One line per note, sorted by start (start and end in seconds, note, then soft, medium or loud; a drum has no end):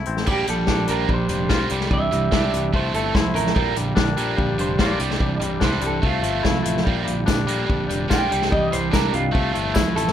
0.00 0.26 A3 medium
0.00 0.27 E4 medium
0.06 0.25 A1 medium
0.06 0.27 C4 medium
0.06 closed hi-hat medium
0.17 snare medium
0.25 0.44 A#1 medium
0.25 0.46 A#2 medium
0.25 1.69 F3 medium
0.25 0.47 F3 medium
0.25 0.47 G3 medium
0.25 1.69 A#3 medium
0.25 0.47 A#3 medium
0.25 2.70 D4 medium
0.25 1.69 G4 medium
0.25 kick loud
0.25 crash loud
0.31 0.49 G4 medium
0.47 0.65 A#1 medium
0.47 0.66 A#2 medium
0.47 0.66 F3 medium
0.47 0.86 G3 medium
0.47 0.88 A4 medium
0.47 closed hi-hat medium
0.67 0.85 A#1 medium
0.67 0.87 A#2 medium
0.67 0.87 F3 medium
0.67 1.71 D4 medium
0.67 kick loud
0.67 snare loud
0.87 1.06 A#1 medium
0.87 1.07 A#2 medium
0.87 1.07 F3 medium
0.87 1.07 G3 medium
0.87 1.09 A#3 medium
0.87 1.09 A#4 medium
0.87 closed hi-hat medium
1.08 1.26 A#1 medium
1.08 1.27 A#2 medium
1.08 1.27 F3 medium
1.08 1.28 G3 medium
1.08 kick loud
1.14 1.51 C5 medium
1.29 1.46 F1 medium
1.29 1.48 A#2 medium
1.29 1.49 F3 medium
1.29 1.70 G3 medium
1.29 closed hi-hat medium
1.49 1.67 B1 medium
1.49 1.68 A#2 medium
1.49 1.70 F3 medium
1.49 1.70 A#3 loud
1.49 1.70 F4 medium
1.49 kick loud
1.49 snare loud
1.54 1.72 C5 medium
1.69 1.88 C2 medium
1.69 1.89 C3 medium
1.69 1.90 E3 medium
1.69 2.73 E3 medium
1.69 1.90 G3 medium
1.69 3.55 C4 medium
1.69 2.73 G4 medium
1.69 closed hi-hat medium
1.81 snare medium
1.91 2.08 C2 medium
1.91 2.10 C3 medium
1.91 2.10 E3 medium
1.91 2.12 G3 medium
1.91 2.72 E5 medium
1.91 kick loud
2.11 2.29 C2 medium
2.11 2.30 C3 medium
2.11 2.30 E3 medium
2.11 2.52 G3 medium
2.11 closed hi-hat medium
2.31 2.49 C2 medium
2.31 2.51 C3 medium
2.31 2.51 E3 medium
2.31 2.52 G3 medium
2.31 2.74 D4 medium
2.31 kick loud
2.31 snare loud
2.53 2.69 C2 medium
2.53 2.72 C3 medium
2.53 2.72 E3 medium
2.53 2.73 G3 medium
2.53 closed hi-hat medium
2.73 2.90 C2 medium
2.73 2.92 C3 medium
2.73 4.98 F3 medium
2.73 2.93 F3 medium
2.73 2.94 A3 medium
2.73 2.93 A3 medium
2.73 3.55 E4 medium
2.73 3.55 A4 medium
2.73 2.95 C5 medium
2.73 kick loud
2.93 3.11 G1 medium
2.93 3.13 C3 medium
2.93 3.13 F3 medium
2.93 3.13 A3 medium
2.93 3.34 A3 medium
2.93 3.14 A4 medium
2.93 closed hi-hat medium
3.14 3.31 C2 medium
3.14 3.33 C3 medium
3.14 3.34 F3 medium
3.14 3.56 E4 medium
3.14 3.34 C5 medium
3.14 kick loud
3.14 snare loud
3.34 3.51 A1 medium
3.34 3.53 C3 medium
3.34 3.54 F3 medium
3.34 3.55 A3 medium
3.34 3.75 A#4 loud
3.34 closed hi-hat loud
3.47 snare medium
3.55 3.72 A#1 loud
3.55 3.75 A#2 medium
3.55 3.75 D3 medium
3.55 3.76 G3 medium
3.55 4.98 A#3 medium
3.55 3.75 A#3 medium
3.55 6.01 D4 medium
3.55 6.00 G4 medium
3.55 kick loud
3.76 3.93 A#1 medium
3.76 3.95 A#2 medium
3.76 3.95 D3 medium
3.76 4.15 G3 medium
3.76 closed hi-hat medium
3.95 4.13 A#1 medium
3.95 4.15 A#2 medium
3.95 4.15 D3 medium
3.95 4.99 D4 medium
3.95 kick loud
3.95 snare loud
4.16 4.34 A#1 medium
4.16 4.36 A#2 medium
4.16 4.36 D3 medium
4.16 4.36 G3 medium
4.16 4.37 A#3 medium
4.16 closed hi-hat medium
4.37 4.55 A#1 medium
4.37 4.56 A#2 medium
4.37 4.56 D3 medium
4.37 4.58 G3 medium
4.37 kick loud
4.58 4.75 F1 medium
4.58 4.77 A#2 medium
4.58 4.77 D3 medium
4.58 4.99 G3 medium
4.58 4.80 C5 medium
4.58 closed hi-hat medium
4.79 4.96 A#1 medium
4.79 4.99 A#2 medium
4.79 4.99 D3 loud
4.79 4.99 A#3 loud
4.79 5.01 F4 medium
4.79 5.60 D5 medium
4.79 kick loud
4.79 snare loud
4.99 5.17 C2 medium
4.99 5.19 C3 medium
4.99 5.19 E3 medium
4.99 6.02 E3 medium
4.99 5.19 G3 medium
4.99 6.84 C4 medium
4.99 closed hi-hat medium
5.10 snare medium
5.20 5.37 C2 medium
5.20 5.39 C3 medium
5.20 5.39 E3 medium
5.20 5.39 G3 medium
5.20 kick loud
5.40 5.58 C2 medium
5.40 5.59 C3 medium
5.40 5.60 E3 medium
5.40 5.80 G3 medium
5.40 closed hi-hat medium
5.60 5.79 C2 medium
5.60 5.82 C3 medium
5.60 5.82 E3 medium
5.60 5.82 G3 medium
5.60 6.02 D4 medium
5.60 kick loud
5.60 snare loud
5.64 5.83 C5 medium
5.81 5.99 C2 medium
5.81 6.01 C3 medium
5.81 6.02 E3 medium
5.81 6.01 G3 medium
5.81 closed hi-hat medium
5.87 6.05 A4 medium
6.02 6.20 C2 medium
6.02 6.22 C3 medium
6.02 6.22 F3 medium
6.02 8.28 F3 medium
6.02 6.21 A3 medium
6.02 6.23 A3 medium
6.02 6.85 A4 medium
6.02 6.85 E5 medium
6.02 kick loud
6.06 7.25 F4 medium
6.23 6.40 G1 medium
6.23 6.43 C3 medium
6.23 6.44 F3 medium
6.23 6.62 A3 medium
6.23 6.44 A3 loud
6.23 closed hi-hat medium
6.43 6.62 C2 medium
6.43 6.63 C3 medium
6.43 6.64 F3 medium
6.43 6.85 E4 medium
6.43 kick loud
6.43 snare loud
6.63 6.82 A1 medium
6.63 6.84 C3 medium
6.63 6.84 F3 medium
6.63 6.83 A3 medium
6.63 closed hi-hat medium
6.77 snare medium
6.84 7.03 A#1 medium
6.84 7.04 A#2 medium
6.84 7.04 D3 medium
6.84 7.03 G3 medium
6.84 8.29 A#3 medium
6.84 7.06 A#3 medium
6.84 9.31 D4 medium
6.84 9.32 G4 medium
6.84 kick loud
7.04 7.24 A#1 medium
7.04 7.25 A#2 medium
7.04 7.25 D3 medium
7.04 7.45 G3 medium
7.04 closed hi-hat medium
7.26 7.45 A#1 medium
7.26 7.46 A#2 medium
7.26 7.46 D3 medium
7.26 8.30 D4 medium
7.26 kick loud
7.26 snare loud
7.26 tambourine medium
7.47 7.65 A#1 medium
7.47 7.67 A#2 medium
7.47 7.67 D3 medium
7.47 7.66 G3 medium
7.47 7.68 A#3 medium
7.47 closed hi-hat medium
7.67 7.86 A#1 medium
7.67 7.88 A#2 medium
7.67 7.87 D3 medium
7.67 7.87 G3 medium
7.67 kick loud
7.88 8.07 F1 medium
7.88 8.07 A#2 medium
7.88 8.07 D3 medium
7.88 8.30 G3 medium
7.88 closed hi-hat medium
8.08 8.27 A#1 medium
8.08 8.29 A#2 medium
8.08 8.29 D3 medium
8.08 8.29 A#3 loud
8.08 8.31 F4 medium
8.08 kick loud
8.08 snare loud
8.08 tambourine medium
8.13 8.52 G5 medium
8.28 8.49 C3 medium
8.28 9.32 E3 medium
8.28 8.50 E3 medium
8.28 8.50 G3 loud
8.28 8.49 G3 medium
8.28 10.12 C4 medium
8.28 closed hi-hat medium
8.33 8.49 C2 medium
8.42 snare medium
8.50 8.69 C2 medium
8.50 8.70 C3 medium
8.50 8.70 E3 medium
8.50 8.70 G3 medium
8.50 8.72 D#5 medium
8.50 kick loud
8.71 8.89 C2 medium
8.71 8.90 C3 medium
8.71 8.91 E3 medium
8.71 9.11 G3 medium
8.71 8.93 C5 medium
8.71 closed hi-hat medium
8.91 9.10 C2 loud
8.91 9.10 C3 medium
8.91 9.10 E3 medium
8.91 9.12 G3 medium
8.91 9.33 D4 medium
8.91 9.13 A#4 medium
8.91 kick loud
8.91 snare loud
8.91 tambourine medium
9.11 9.30 C2 medium
9.11 9.30 C3 medium
9.11 9.31 E3 medium
9.11 9.32 G3 medium
9.11 9.54 F4 medium
9.11 closed hi-hat medium
9.31 9.51 C2 medium
9.31 9.52 C3 medium
9.31 9.53 F3 medium
9.31 9.53 A3 medium
9.31 9.53 A3 loud
9.31 kick loud
9.36 10.12 F3 medium
9.36 10.12 E4 medium
9.36 10.12 A4 medium
9.53 9.72 G1 medium
9.53 9.74 C3 medium
9.53 9.74 F3 loud
9.53 9.94 A3 medium
9.53 9.74 A3 loud
9.53 closed hi-hat medium
9.74 9.93 C2 medium
9.74 9.95 C3 medium
9.74 9.95 F3 medium
9.74 10.12 E4 medium
9.74 kick loud
9.74 snare loud
9.74 tambourine loud
9.96 10.12 A1 medium
9.96 10.12 C3 medium
9.96 10.12 F3 medium
9.96 10.12 A3 medium
9.96 10.12 A4 medium
9.96 closed hi-hat medium
10.07 snare medium